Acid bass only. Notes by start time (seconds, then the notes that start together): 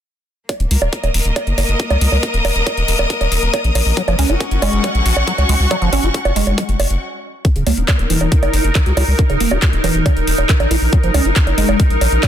3.97 F#3
4.08 F3
4.19 C#4
4.30 F#4
4.62 G#3
4.84 F#3
5.27 F#3
5.49 G#3
5.71 F#3
5.82 F3
5.93 C#4
6.03 F#4
6.36 G#3
6.58 F#3
7.45 D#3
7.56 C#3
7.67 A#3
7.77 D#4
8.10 E3
8.32 D#3
8.75 D#3
8.97 E4
9.19 D#3
9.30 C#3
9.40 A#3
9.51 D#4
9.84 E3
10.06 D#3
10.49 D#3
10.71 E4
10.93 F#3
11.04 F3
11.14 C#4
11.25 F#4
11.58 G#3
11.80 F#3
12.23 F#3